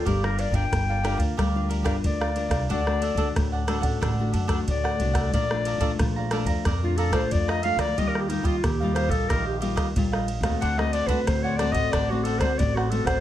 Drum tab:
RD |x-xxx-xxx-xxx-xx|x-xxx-xxx-xxx-xx|x-xxx-xxx-xxx-xx|x-xxx-xxx-xxx-xx|
SD |-r--r-r-r--r-r-r|-r--r-r-r--r-r-r|-r--r-r-r--r-r-r|-r--r-r-r--r-r-r|
BD |o--oo--oo--oo--o|o--oo--oo--oo--o|o--oo--oo--oo--o|o--oo--oo--oo--o|

RD |x-xxx-xxx-xxx-xx|
SD |-r--r-r-r--r-r-r|
BD |o--oo--oo--oo--o|